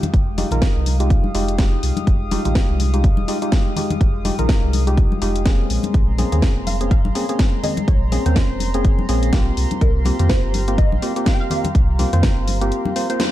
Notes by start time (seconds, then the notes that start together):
Already playing: G#3 F5 G5 D#6
0.03 closed hi-hat, high conga, low conga
0.14 F1, kick, closed hi-hat
0.38 G#3 D#4 F4 G4, open hi-hat, high conga
0.51 A#1 G#3 D#4 F4 A#4, closed hi-hat, low conga
0.62 kick, snare, closed hi-hat
0.76 C2
0.86 open hi-hat, high conga
1.00 G#3 D#4 F4 G4, closed hi-hat
1.10 kick, closed hi-hat
1.24 high conga
1.34 F1 G#3 D#4 F4 G4, open hi-hat
1.49 closed hi-hat
1.58 G#3 D#4 F4 G4, kick, snare, closed hi-hat, high conga
1.83 C2, open hi-hat
1.97 closed hi-hat, high conga
2.07 F1, kick, closed hi-hat
2.31 G#3 D#4 F4 G4, open hi-hat, high conga
2.45 A#1 G#3 D#4 F4 G4, closed hi-hat, low conga
2.55 kick, snare, closed hi-hat
2.69 C2
2.80 open hi-hat, high conga
2.93 G#3 D#4 F4 G4, closed hi-hat
3.04 kick, closed hi-hat
3.17 D#1, high conga
3.28 G#3 D#4 F4 G4, open hi-hat
3.42 G#3 D#4 F4 G4, closed hi-hat
3.52 kick, snare, closed hi-hat, high conga
3.76 G#3 D#4 F4 G4, open hi-hat, low conga
3.90 closed hi-hat, high conga, low conga
4.01 F1, kick, closed hi-hat
4.25 G#3 D#4 F4 G4, open hi-hat, high conga
4.39 A#1 G#3 D#4 F4 A#4, closed hi-hat, low conga
4.49 kick, snare, closed hi-hat
4.63 C2
4.73 open hi-hat, high conga
4.87 G#3 D#4 F4 G4, closed hi-hat
4.97 kick, closed hi-hat
5.12 high conga
5.22 F1 G#3 D#4 F4 G4, open hi-hat
5.36 closed hi-hat
5.46 A#3 C4 C#4 G#4, kick, snare, closed hi-hat, high conga
5.70 A#1 A#5 C6, open hi-hat
5.83 closed hi-hat, high conga
5.94 A#1, kick, closed hi-hat
6.18 A#3 C4 C#4 G#4, open hi-hat, high conga
6.32 D#2 A#3 C4 C#4 G#4, closed hi-hat, low conga
6.42 kick, snare, closed hi-hat
6.56 F1
6.67 F5, open hi-hat, high conga
6.81 A#3 C4 C#4 G#4, closed hi-hat
6.91 F5, kick, closed hi-hat
7.05 G#1, high conga
7.15 A#3 C4 C#4 G#4, open hi-hat
7.29 A#3 C4 C#4 G#4, closed hi-hat
7.39 kick, snare, closed hi-hat, high conga
7.63 A#3 C4 C#4 G#4 D#5, open hi-hat, low conga
7.77 closed hi-hat, high conga, low conga
7.87 A#1 C#5, kick, closed hi-hat
8.12 A#3 C4 C#4 G#4, open hi-hat, high conga
8.26 D#2 A#3 C4 C#4 C5, closed hi-hat, low conga
8.36 kick, snare, closed hi-hat
8.50 F1
8.60 open hi-hat, high conga
8.74 A#3 C4 C#4 G#4, closed hi-hat
8.85 kick, closed hi-hat
8.99 high conga
9.09 A#1 A#3 C4 C#4 G#4, open hi-hat
9.23 closed hi-hat
9.33 A#3 C4 F4 G4, kick, snare, closed hi-hat, high conga
9.57 C2 G4 F5, open hi-hat
9.71 closed hi-hat, high conga
9.81 C2 A#4, kick, closed hi-hat
10.05 A#3 C4 F4 G4, open hi-hat, high conga
10.19 F2 A#3 C4 F4 G4, closed hi-hat, low conga
10.29 C5, kick, snare, closed hi-hat
10.44 G1
10.54 open hi-hat, high conga
10.68 A#3 C4 F4 G4, closed hi-hat
10.78 D#5, kick, closed hi-hat
10.92 A#1, high conga
11.02 A#3 C4 F4 G4, open hi-hat
11.16 A#3 C4 F4 G4, closed hi-hat
11.26 F5, kick, snare, closed hi-hat, high conga
11.33 G5
11.40 F5
11.50 A#3 C4 F4 G4 F5, open hi-hat, low conga
11.64 closed hi-hat, high conga, low conga
11.75 C2, kick, closed hi-hat
11.99 A#3 C4 F4 G4, open hi-hat, high conga
12.13 F2 A#3 C4 F4 C5, closed hi-hat, low conga
12.23 kick, snare, closed hi-hat
12.37 G1
12.48 open hi-hat, high conga
12.61 A#3 C4 F4 G4, closed hi-hat
12.72 closed hi-hat
12.85 high conga
12.96 A#3 C4 F4 C5, open hi-hat
13.10 A#3 C4 F4 C5, closed hi-hat
13.20 snare, closed hi-hat, high conga